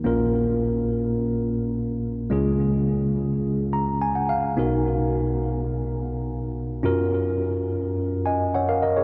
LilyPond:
\new Staff \with { instrumentName = "Tine electric piano" } { \time 4/4 \key ces \lydian \tempo 4 = 106 << { r1 | r2 r8 bes''8 aes''16 ges''16 f''8 | r1 | r2 r8 <ees'' aes''>8 <des'' ges''>16 <bes' f''>16 <bes' ees''>16 <aes' des''>16 | } \\ { <bes,, bes, bes des' f' bes'>1 | <des, des aes des' f' aes'>1 | <b,, b, b dis' fis' ais'>1 | <ges, des' f' ges' bes'>1 | } >> }